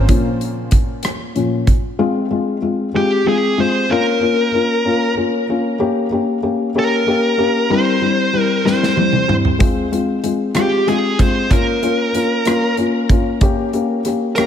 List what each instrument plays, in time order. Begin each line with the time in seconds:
0.08 felt piano A#2 F3 C#4, kick, closed hi-hat
0.41 closed hi-hat
0.71 kick, closed hi-hat
1.03 cross-stick, closed hi-hat
1.35 felt piano A#2 F3 C#4, closed hi-hat
1.67 kick, closed hi-hat
1.99 felt piano G#3 C4 F4
2.30 felt piano G#3 C4 F4
2.62 felt piano G#3 C4 F4
2.94 felt piano G#3 C4 F4, lead electric guitar G4
3.26 felt piano G#3 C4 F4, lead electric guitar G#4
3.58 felt piano G#3 C4 F4, lead electric guitar C5
3.90 felt piano A#3 C#4 F4, lead electric guitar A#4
4.21 felt piano A#3 C#4 F4
4.53 felt piano A#3 C#4 F4
4.85 felt piano A#3 C#4 F4
5.17 felt piano A#3 C#4 F4
5.49 felt piano A#3 C#4 F4
5.79 felt piano A#3 C#4 G4
6.11 felt piano A#3 C#4 G4
6.43 felt piano A#3 C#4 G4
6.75 felt piano A#3 C#4 G4, lead electric guitar A#4
7.06 felt piano A#3 C#4 G4
7.38 felt piano A#3 C#4 G4
7.70 felt piano G3 C4 E4, lead electric guitar C5
8.02 felt piano G3 C4 E4
8.33 felt piano G3 C4 E4
8.40 lead electric guitar A#4
8.65 felt piano G3 C4 E4, lead electric guitar C5, snare
8.83 snare
8.97 felt piano G3 C4 E4, high tom
9.13 mid tom
9.28 felt piano G3 C4 E4, mid tom
9.45 floor tom
9.59 felt piano G#3 C4 F4, kick, closed hi-hat
9.92 felt piano G#3 C4 F4, closed hi-hat
10.23 felt piano G#3 C4 F4, closed hi-hat
10.55 felt piano G#3 C4 F4, lead electric guitar G4, cross-stick, closed hi-hat
10.87 felt piano G#3 C4 F4, lead electric guitar G#4, closed hi-hat
11.19 felt piano G#3 C4 F4, lead electric guitar C5, kick, closed hi-hat
11.50 felt piano A#3 C#4 F4, lead electric guitar A#4, kick, closed hi-hat
11.82 felt piano A#3 C#4 F4, closed hi-hat
12.14 felt piano A#3 C#4 F4, closed hi-hat
12.45 felt piano A#3 C#4 F4, cross-stick, closed hi-hat
12.77 felt piano A#3 C#4 F4, closed hi-hat
13.09 felt piano A#3 C#4 F4, kick, closed hi-hat
13.41 felt piano A#3 C#4 G4, kick, closed hi-hat
13.73 felt piano A#3 C#4 G4, closed hi-hat
14.05 felt piano A#3 C#4 G4, cross-stick, closed hi-hat
14.36 felt piano A#3 C#4 G4, lead electric guitar A#4, cross-stick, closed hi-hat